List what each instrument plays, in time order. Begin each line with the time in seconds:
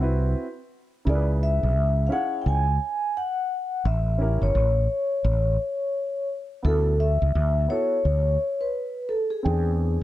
0.00 fretless electric bass C2, upright piano C4 E4 F#4 B4
1.05 fretless electric bass C#2, upright piano C#3 E4 G#4 A#4
1.09 vibraphone D5
1.15 upright piano B4
1.43 vibraphone E5
1.63 fretless electric bass B1
1.76 fretless electric bass C#2
2.07 upright piano C#4 E4, vibraphone F5
2.11 upright piano G#4 C#5, vibraphone F#5
2.42 vibraphone G5
2.46 fretless electric bass C#2, vibraphone G#5
3.17 vibraphone F#5
3.85 fretless electric bass A1, vibraphone E5
4.18 upright piano C#4 E4 G4 A#4
4.42 fretless electric bass G1, vibraphone C#5
4.55 fretless electric bass A1
5.24 fretless electric bass A1
6.63 fretless electric bass D2, upright piano B3 E4 F#4 A4, vibraphone A4
7.00 vibraphone E5
7.22 fretless electric bass C#2
7.35 fretless electric bass D2
7.68 upright piano B3 E4 F#4 A4, vibraphone C#5
8.05 fretless electric bass D2
8.61 vibraphone B4
9.09 vibraphone A4
9.30 vibraphone G#4
9.43 fretless electric bass E2, upright piano C4 D4 G#4 G5